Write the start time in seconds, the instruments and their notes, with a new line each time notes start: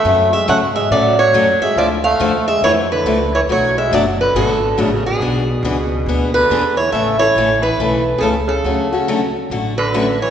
Already playing: tenor saxophone A3, steel-string acoustic guitar E5
0.04 upright bass F#2, steel-string acoustic guitar C#3 F#3 A3 C#4 F#4
0.33 tenor saxophone G#3, steel-string acoustic guitar E5
0.48 upright bass G#2, steel-string acoustic guitar C#3 F#3 A3 C#4 F#4 F#5, tenor saxophone A3
0.75 tenor saxophone G#3, steel-string acoustic guitar E5
0.90 upright bass A2, steel-string acoustic guitar C#3 F#3 A3 C#4 F#4 D5, tenor saxophone F#3
1.19 tenor saxophone F#3, steel-string acoustic guitar C#5
1.33 upright bass F#2, steel-string acoustic guitar C#3 F#3 A3 C#4 F#4
1.60 tenor saxophone G#3, steel-string acoustic guitar E5, muted upright bass stroke
1.76 upright bass D2, steel-string acoustic guitar D3 F3 A3 E4 D5, tenor saxophone F3
2.04 tenor saxophone A3, steel-string acoustic guitar F5
2.20 upright bass E2, steel-string acoustic guitar D3 F3 A3 E4
2.48 tenor saxophone G#3, steel-string acoustic guitar E5
2.62 upright bass F2, steel-string acoustic guitar D3 F3 A3 E4 C#5, tenor saxophone E3
2.91 tenor saxophone D3, steel-string acoustic guitar B4
3.05 upright bass C#2, steel-string acoustic guitar D3 F3 A3 E4
3.35 tenor saxophone E3, steel-string acoustic guitar C#5
3.48 upright bass B1, steel-string acoustic guitar B2 F#3 A3 D4 F#4 C#5, tenor saxophone F#3
3.77 tenor saxophone G#3, steel-string acoustic guitar E5
3.91 upright bass F#1, steel-string acoustic guitar B2 F#3 A3 D4 F#4 D5, tenor saxophone F#3
4.21 tenor saxophone D3, steel-string acoustic guitar B4
4.34 upright bass G#1, steel-string acoustic guitar B2 F#3 A3 D4 F#4 A4, tenor saxophone D3
4.78 upright bass A1, steel-string acoustic guitar B2 F#3 A3 D4 F#4
4.83 tenor saxophone C#3, steel-string acoustic guitar G#4
5.06 tenor saxophone B2, steel-string acoustic guitar G#4
5.20 upright bass B1, steel-string acoustic guitar E3 B3 D4 G#4
5.63 upright bass C#2, steel-string acoustic guitar E3 B3 D4 G#4
6.06 upright bass D2, steel-string acoustic guitar E3 B3 D4 G#4
6.34 tenor saxophone D3, steel-string acoustic guitar B4
6.50 upright bass E2, steel-string acoustic guitar E3 B3 D4 G#4
6.77 tenor saxophone E3, steel-string acoustic guitar C#5
6.92 upright bass A1, steel-string acoustic guitar C#3 E3 A3 C#4 A4 E5, tenor saxophone A3
7.19 tenor saxophone E3, steel-string acoustic guitar A3 C#4 A4 C#5
7.36 upright bass A1, steel-string acoustic guitar C#3 E3 A3 C#4 A4
7.61 tenor saxophone E3, steel-string acoustic guitar B4
7.78 upright bass B1, steel-string acoustic guitar C#3 E3 A3 C#4 A4
8.18 upright bass C#2, tenor saxophone B2 C#3, steel-string acoustic guitar G#4 A4
8.22 steel-string acoustic guitar C#3 E3 A3 C#4 A4
8.47 tenor saxophone C#3, steel-string acoustic guitar A4
8.64 upright bass D2, steel-string acoustic guitar D3 F#3 A3 C#4 F#4
8.93 steel-string acoustic guitar A3 C#4 F#4
9.08 steel-string acoustic guitar D3 F#3 A3 C#4 F#4
9.50 upright bass A1, steel-string acoustic guitar D3 F#3 A3 C#4 F#4
9.78 tenor saxophone D3, steel-string acoustic guitar B4
9.94 steel-string acoustic guitar D3 F#3 A3 C#4 F#4
10.21 tenor saxophone E3, steel-string acoustic guitar C#5